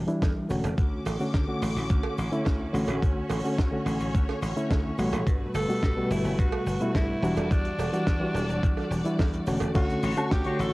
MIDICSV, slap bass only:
0, 0, Header, 1, 3, 480
1, 0, Start_track
1, 0, Key_signature, 2, "major"
1, 0, Tempo, 560748
1, 668, Time_signature, 4, 2, 24, 8
1, 9186, End_track
2, 0, Start_track
2, 0, Title_t, "Slap bass"
2, 0, Program_c, 0, 36
2, 188, Note_on_c, 0, 40, 84
2, 273, Note_off_c, 0, 40, 0
2, 427, Note_on_c, 0, 28, 74
2, 512, Note_off_c, 0, 28, 0
2, 547, Note_on_c, 0, 28, 98
2, 632, Note_off_c, 0, 28, 0
2, 667, Note_on_c, 0, 38, 91
2, 837, Note_off_c, 0, 38, 0
2, 906, Note_on_c, 0, 33, 82
2, 992, Note_off_c, 0, 33, 0
2, 1147, Note_on_c, 0, 38, 81
2, 1233, Note_off_c, 0, 38, 0
2, 1387, Note_on_c, 0, 33, 96
2, 1472, Note_off_c, 0, 33, 0
2, 1508, Note_on_c, 0, 33, 87
2, 1593, Note_off_c, 0, 33, 0
2, 1627, Note_on_c, 0, 38, 92
2, 1712, Note_off_c, 0, 38, 0
2, 1869, Note_on_c, 0, 33, 84
2, 1953, Note_off_c, 0, 33, 0
2, 2107, Note_on_c, 0, 38, 87
2, 2277, Note_off_c, 0, 38, 0
2, 2344, Note_on_c, 0, 33, 87
2, 2431, Note_off_c, 0, 33, 0
2, 2465, Note_on_c, 0, 33, 95
2, 2551, Note_off_c, 0, 33, 0
2, 2586, Note_on_c, 0, 38, 90
2, 2756, Note_off_c, 0, 38, 0
2, 2824, Note_on_c, 0, 33, 83
2, 2911, Note_off_c, 0, 33, 0
2, 3068, Note_on_c, 0, 38, 82
2, 3153, Note_off_c, 0, 38, 0
2, 3302, Note_on_c, 0, 33, 94
2, 3390, Note_off_c, 0, 33, 0
2, 3427, Note_on_c, 0, 33, 85
2, 3512, Note_off_c, 0, 33, 0
2, 3549, Note_on_c, 0, 38, 96
2, 3633, Note_off_c, 0, 38, 0
2, 3785, Note_on_c, 0, 33, 88
2, 3871, Note_off_c, 0, 33, 0
2, 4028, Note_on_c, 0, 38, 88
2, 4197, Note_off_c, 0, 38, 0
2, 4266, Note_on_c, 0, 33, 91
2, 4352, Note_off_c, 0, 33, 0
2, 4385, Note_on_c, 0, 33, 94
2, 4471, Note_off_c, 0, 33, 0
2, 4507, Note_on_c, 0, 43, 96
2, 4677, Note_off_c, 0, 43, 0
2, 4743, Note_on_c, 0, 31, 86
2, 4830, Note_off_c, 0, 31, 0
2, 4989, Note_on_c, 0, 43, 85
2, 5073, Note_off_c, 0, 43, 0
2, 5225, Note_on_c, 0, 31, 98
2, 5311, Note_off_c, 0, 31, 0
2, 5344, Note_on_c, 0, 31, 88
2, 5431, Note_off_c, 0, 31, 0
2, 5467, Note_on_c, 0, 43, 93
2, 5553, Note_off_c, 0, 43, 0
2, 5703, Note_on_c, 0, 31, 89
2, 5790, Note_off_c, 0, 31, 0
2, 5947, Note_on_c, 0, 43, 93
2, 6117, Note_off_c, 0, 43, 0
2, 6182, Note_on_c, 0, 28, 93
2, 6270, Note_off_c, 0, 28, 0
2, 6303, Note_on_c, 0, 28, 96
2, 6390, Note_off_c, 0, 28, 0
2, 6427, Note_on_c, 0, 40, 94
2, 6597, Note_off_c, 0, 40, 0
2, 6663, Note_on_c, 0, 28, 87
2, 6750, Note_off_c, 0, 28, 0
2, 6907, Note_on_c, 0, 40, 81
2, 6992, Note_off_c, 0, 40, 0
2, 7142, Note_on_c, 0, 28, 96
2, 7230, Note_off_c, 0, 28, 0
2, 7266, Note_on_c, 0, 28, 86
2, 7351, Note_off_c, 0, 28, 0
2, 7387, Note_on_c, 0, 40, 96
2, 7473, Note_off_c, 0, 40, 0
2, 7623, Note_on_c, 0, 28, 85
2, 7710, Note_off_c, 0, 28, 0
2, 7868, Note_on_c, 0, 40, 95
2, 8037, Note_off_c, 0, 40, 0
2, 8106, Note_on_c, 0, 28, 88
2, 8192, Note_off_c, 0, 28, 0
2, 8226, Note_on_c, 0, 28, 88
2, 8311, Note_off_c, 0, 28, 0
2, 8349, Note_on_c, 0, 38, 94
2, 8518, Note_off_c, 0, 38, 0
2, 8587, Note_on_c, 0, 33, 91
2, 8672, Note_off_c, 0, 33, 0
2, 8830, Note_on_c, 0, 38, 84
2, 8914, Note_off_c, 0, 38, 0
2, 9069, Note_on_c, 0, 33, 99
2, 9153, Note_off_c, 0, 33, 0
2, 9186, End_track
3, 0, Start_track
3, 0, Title_t, "Muted slap bass strokes"
3, 68, Note_on_c, 9, 29, 42
3, 153, Note_off_c, 9, 29, 0
3, 1988, Note_on_c, 9, 29, 42
3, 2074, Note_off_c, 9, 29, 0
3, 6783, Note_on_c, 9, 29, 43
3, 6868, Note_off_c, 9, 29, 0
3, 9186, End_track
0, 0, End_of_file